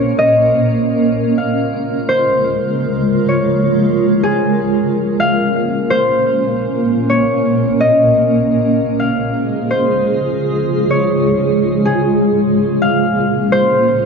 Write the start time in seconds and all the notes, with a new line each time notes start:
Already playing: A#2 A#3 C#4 A#4 C#5
0.19 D#5
1.14 C#3 G#3 F4
1.38 F5
2.09 C5
3.28 C#5
4.23 G#4
4.95 A#2 A#3 C#4
5.20 F5
5.90 C5
7.09 C#5
7.80 D#5
8.76 C#3 G#3 F4 G#4
9.00 F5
9.71 C5
10.90 C#5
11.85 G#4
12.57 A#2 A#3 C#4 A#4
12.82 F5
13.52 C5